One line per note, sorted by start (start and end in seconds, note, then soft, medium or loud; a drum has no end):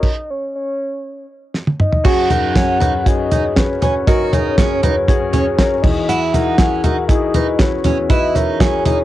0.00 0.32 D#5 loud
0.00 kick medium
0.00 crash medium
0.30 0.55 C#5 medium
0.55 1.26 C#5 medium
1.54 snare soft
1.67 high tom medium
1.80 2.07 D#5 medium
1.80 mid tom medium
1.92 floor tom medium
2.04 4.02 F#1 medium
2.04 4.02 F#2 medium
2.04 2.26 C#4 medium
2.04 2.26 F#4 medium
2.04 2.29 F#4 loud
2.04 2.26 G#4 loud
2.04 2.30 F#5 loud
2.04 kick loud
2.04 crash medium
2.30 2.51 C#4 medium
2.30 2.54 D#4 medium
2.30 2.51 F#4 medium
2.30 2.51 A#4 medium
2.30 3.08 F#5 loud
2.30 closed hi-hat medium
2.30 floor tom medium
2.54 2.76 C#4 medium
2.54 2.80 C#4 medium
2.54 2.76 F#4 medium
2.54 2.76 G#4 medium
2.54 kick loud
2.54 snare loud
2.54 closed hi-hat medium
2.80 3.01 C#4 medium
2.80 2.92 D#4 medium
2.80 3.02 F#4 medium
2.80 3.02 B4 medium
2.80 closed hi-hat medium
2.80 floor tom medium
3.06 3.27 C#4 medium
3.06 3.27 F#4 medium
3.06 3.27 G#4 medium
3.06 3.59 D#5 medium
3.06 kick loud
3.06 closed hi-hat medium
3.31 3.52 C#4 medium
3.31 3.43 D#4 medium
3.31 3.52 F#4 medium
3.31 3.53 G#4 medium
3.31 closed hi-hat medium
3.31 floor tom medium
3.56 3.78 C#4 medium
3.56 3.78 F#4 medium
3.56 3.78 B4 medium
3.56 3.82 C#5 medium
3.56 kick medium
3.56 snare loud
3.56 closed hi-hat medium
3.81 4.02 C#4 medium
3.81 3.94 C#4 medium
3.81 4.03 F#4 medium
3.81 4.03 B4 medium
3.81 4.08 C#5 medium
3.81 closed hi-hat medium
3.81 floor tom medium
4.07 5.79 F#1 medium
4.07 5.79 F#2 medium
4.07 4.28 C#4 loud
4.07 4.28 F#4 medium
4.07 4.31 F#4 loud
4.07 4.28 A#4 loud
4.07 4.32 D#5 medium
4.07 kick loud
4.07 closed hi-hat medium
4.32 4.53 C#4 medium
4.32 4.56 D#4 medium
4.32 4.53 F#4 medium
4.32 4.54 G#4 medium
4.32 5.84 C#5 loud
4.32 closed hi-hat medium
4.32 floor tom medium
4.57 4.78 C#4 medium
4.57 4.82 C#4 medium
4.57 4.78 F#4 medium
4.57 4.79 G#4 medium
4.57 kick loud
4.57 snare loud
4.57 closed hi-hat medium
4.83 5.04 C#4 medium
4.83 4.95 D#4 medium
4.83 5.04 F#4 medium
4.83 5.04 B4 medium
4.83 closed hi-hat medium
4.83 floor tom medium
5.08 5.29 C#4 loud
5.08 5.29 F#4 loud
5.08 5.29 G#4 loud
5.08 kick loud
5.08 closed hi-hat medium
5.32 5.54 C#4 medium
5.32 5.45 C#4 medium
5.32 5.54 F#4 medium
5.32 5.54 G#4 loud
5.32 closed hi-hat medium
5.32 floor tom medium
5.58 5.79 C#4 medium
5.58 5.79 F#4 medium
5.58 5.80 A#4 medium
5.58 kick medium
5.58 snare loud
5.58 closed hi-hat medium
5.82 7.81 E2 medium
5.82 7.81 E3 medium
5.82 6.25 E4 medium
5.82 6.26 F#4 medium
5.82 6.26 G#4 medium
5.82 6.08 D#5 medium
5.82 kick loud
5.82 floor tom medium
5.82 crash medium
6.09 6.32 E4 medium
6.09 6.20 F#5 loud
6.09 closed hi-hat medium
6.33 6.58 D#4 medium
6.33 6.55 E4 medium
6.33 6.55 F#4 medium
6.33 6.55 A#4 medium
6.33 7.05 F#5 loud
6.33 closed hi-hat medium
6.33 floor tom medium
6.58 6.83 C#4 medium
6.58 6.80 E4 medium
6.58 6.80 F#4 medium
6.58 6.80 G#4 medium
6.58 kick loud
6.58 snare loud
6.58 closed hi-hat medium
6.84 6.96 D#4 medium
6.84 7.05 E4 medium
6.84 7.06 F#4 medium
6.84 7.06 A#4 medium
6.84 closed hi-hat medium
6.84 floor tom medium
7.08 7.30 E4 medium
7.08 7.30 F#4 medium
7.08 7.31 G#4 loud
7.08 7.60 D#5 loud
7.08 kick loud
7.08 closed hi-hat medium
7.34 7.46 D#4 medium
7.34 7.55 E4 medium
7.34 7.56 F#4 medium
7.34 7.56 B4 medium
7.34 closed hi-hat medium
7.34 floor tom medium
7.59 7.81 E4 medium
7.59 7.81 F#4 medium
7.59 7.81 B4 medium
7.59 7.83 C#5 medium
7.59 kick loud
7.59 snare loud
7.59 closed hi-hat medium
7.84 9.04 E2 medium
7.84 9.04 E3 medium
7.84 7.97 C#4 medium
7.84 8.06 E4 medium
7.84 8.06 F#4 medium
7.84 8.06 G#4 medium
7.84 8.11 C#5 loud
7.84 closed hi-hat medium
7.84 floor tom medium
8.09 8.31 E4 medium
8.09 8.34 E4 loud
8.09 8.31 F#4 medium
8.09 8.31 B4 loud
8.09 8.37 D#5 loud
8.09 kick loud
8.09 closed hi-hat medium
8.35 8.59 D#4 medium
8.35 8.56 E4 medium
8.35 8.56 F#4 medium
8.35 8.56 A#4 medium
8.35 9.04 C#5 loud
8.35 closed hi-hat medium
8.35 floor tom medium
8.60 8.84 C#4 medium
8.60 8.81 E4 medium
8.60 8.81 F#4 medium
8.60 8.82 G#4 medium
8.60 kick loud
8.60 snare loud
8.60 closed hi-hat medium
8.86 8.98 D#4 medium
8.86 9.04 E4 medium
8.86 9.04 F#4 medium
8.86 9.04 G#4 medium
8.86 closed hi-hat medium
8.86 floor tom medium